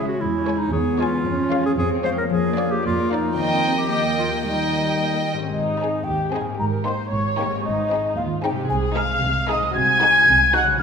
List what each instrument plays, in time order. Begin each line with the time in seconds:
Already playing: harp C#3 E4 G#4, viola section G#3, cello section C#4, violin section C#5 E5
0.03 harp G#3
0.08 clarinet F#4
0.20 double bass section E2, harp E3, cello section G#3, clarinet E4
0.38 harp C#4
0.47 viola section G#3, violin section C#5 G#5
0.55 clarinet D#4, harp G#4
0.72 double bass section E2, cello section B3, clarinet G#4, harp C#5
0.90 harp G#4
0.98 viola section G#3, clarinet F4, violin section C#5 G#5
1.08 harp C#4
1.25 double bass section F2, harp F3, cello section C#4
1.43 harp C#4
1.51 viola section G#3, violin section C#5 F5
1.60 harp G#4
1.66 clarinet G#4
1.77 double bass section F2, cello section C4, clarinet G#4, harp C#5
1.95 harp G#4
2.04 viola section G#3, clarinet C5, violin section C#5 F5
2.12 harp C#4
2.18 clarinet A#4
2.30 double bass section F2, harp F3, cello section A#3, clarinet G#4
2.48 harp D4
2.56 viola section A#3, violin section D5 F5
2.65 harp F4
2.71 clarinet G4
2.82 double bass section F2, clarinet F4, harp D5
3.00 harp A#4
3.10 viola section A#3, clarinet D#4, violin section D5 F5
3.18 harp F4
3.35 double bass section D#2, harp D#3, viola section A#3, cello section C4, violin section D#5 G5
3.53 harp D#4
3.71 harp G4
3.78 clarinet G4
3.90 viola section A#3, cello section A#3, clarinet G4, harp D#5, violin section D#5 G5
4.07 harp A#4
4.18 clarinet F4
4.26 harp G4
4.44 harp D#3, cello section G3, viola section A#3, clarinet D#4, violin section D#5 G5
4.62 harp D#4
4.80 harp G4
4.98 viola section A#3, harp D#5
5.13 viola section A#3, harp A#4
5.34 harp G#2 G4
5.38 harp C4, viola section C#4
5.43 harp D#4
5.47 harp G#4
5.52 double bass section G#1, cello section G#2, viola section D#4, flute D#5
5.80 violin section C4 D#4 G#4
6.04 double bass section D#2, cello section D#2, viola section G4, flute G5
6.31 violin section C4 D#4 G#4, viola section G#4, flute G#5
6.41 harp G#2
6.45 harp A#3
6.50 harp D#4
6.54 harp G4
6.59 double bass section G#1, cello section G#2, viola section A#4, flute A#5
6.85 violin section A#3 D#4 G4, viola section C5, flute C6
7.11 double bass section G#1, cello section G#2, viola section C#5, flute C#6
7.39 violin section A#3 D#4 G4
7.46 harp G#2
7.51 harp C4
7.55 harp D#4
7.60 harp G#4
7.64 double bass section G#1, cello section G#2, viola section D#4, flute D#5
7.91 violin section C4 D#4 G#4
8.16 cello section D#2, double bass section D#2, viola section F4, flute F5
8.42 violin section C4 D#4 G#4, viola section G4, flute G5
8.51 harp C3
8.55 harp G#3
8.60 harp D#4
8.65 harp G#4
8.70 double bass section C2, cello section C3, viola section G#4, flute G#5
8.95 violin section G#3 D#4 G#4, viola section F5, flute F6
9.22 double bass section C2, cello section C3
9.48 violin section G#3 D#4 G#4, viola section D#5, flute D#6
9.58 harp C3
9.62 harp G#3
9.67 harp D#4
9.71 harp F#4, flute G#6
9.76 double bass section C2, cello section C3, viola section G#5
10.01 violin section G#3 D#4 F#4
10.29 double bass section C2, cello section C3
10.54 violin section G#3 D#4 F#4, viola section F#5, flute F#6
10.63 harp C#3
10.67 harp G#3
10.72 harp C#4
10.76 harp F4, flute F6